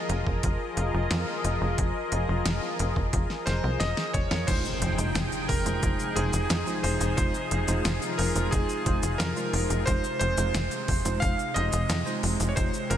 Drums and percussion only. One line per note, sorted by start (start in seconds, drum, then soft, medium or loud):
0.09 closed hi-hat medium
0.27 kick medium
0.43 kick loud
0.43 closed hi-hat medium
0.77 closed hi-hat medium
1.11 snare loud
1.11 closed hi-hat medium
1.44 closed hi-hat medium
1.78 kick loud
1.78 closed hi-hat medium
2.12 closed hi-hat medium
2.46 snare loud
2.46 closed hi-hat loud
2.79 closed hi-hat medium
2.96 kick medium
3.13 kick loud
3.13 closed hi-hat medium
3.30 snare soft
3.47 snare medium
3.47 closed hi-hat medium
3.80 snare medium
3.80 closed hi-hat medium
3.97 snare medium
4.14 kick loud
4.14 closed hi-hat medium
4.31 snare medium
4.48 kick loud
4.48 closed hi-hat medium
4.48 crash loud
4.48 shaker soft
4.65 shaker soft
4.82 closed hi-hat medium
4.99 closed hi-hat medium
4.99 shaker medium
5.15 snare loud
5.15 closed hi-hat medium
5.15 shaker soft
5.32 closed hi-hat soft
5.32 shaker soft
5.49 kick loud
5.49 open hi-hat medium
5.66 closed hi-hat medium
5.66 shaker medium
5.83 kick loud
5.83 closed hi-hat medium
5.83 shaker soft
6.00 shaker soft
6.16 closed hi-hat medium
6.33 closed hi-hat medium
6.33 shaker medium
6.50 snare loud
6.50 closed hi-hat medium
6.50 shaker soft
6.67 shaker soft
6.84 open hi-hat medium
7.01 closed hi-hat medium
7.01 shaker medium
7.18 kick loud
7.18 closed hi-hat medium
7.18 shaker soft
7.34 shaker soft
7.51 closed hi-hat medium
7.68 closed hi-hat medium
7.68 shaker medium
7.85 snare loud
7.85 closed hi-hat medium
7.85 shaker soft
8.02 closed hi-hat soft
8.02 shaker soft
8.19 open hi-hat medium
8.36 closed hi-hat medium
8.36 shaker medium
8.52 kick loud
8.52 closed hi-hat medium
8.52 shaker soft
8.69 shaker soft
8.86 kick loud
8.86 closed hi-hat medium
9.03 closed hi-hat medium
9.03 shaker medium
9.20 snare loud
9.20 closed hi-hat medium
9.20 shaker medium
9.37 shaker soft
9.53 open hi-hat medium
9.70 closed hi-hat medium
9.70 shaker medium
9.87 kick loud
9.87 closed hi-hat medium
9.87 shaker soft
10.04 shaker soft
10.21 closed hi-hat medium
10.38 closed hi-hat medium
10.38 shaker medium
10.55 snare loud
10.55 closed hi-hat medium
10.55 shaker medium
10.71 closed hi-hat soft
10.71 shaker soft
10.88 kick loud
10.88 open hi-hat medium
11.05 closed hi-hat medium
11.05 shaker medium
11.22 kick loud
11.22 closed hi-hat medium
11.22 shaker soft
11.39 shaker soft
11.56 closed hi-hat medium
11.73 closed hi-hat medium
11.73 shaker medium
11.90 snare loud
11.90 closed hi-hat medium
11.90 shaker medium
12.07 shaker soft
12.23 open hi-hat medium
12.40 closed hi-hat medium
12.40 shaker medium
12.57 kick loud
12.57 closed hi-hat medium
12.57 shaker medium
12.74 shaker soft
12.91 closed hi-hat medium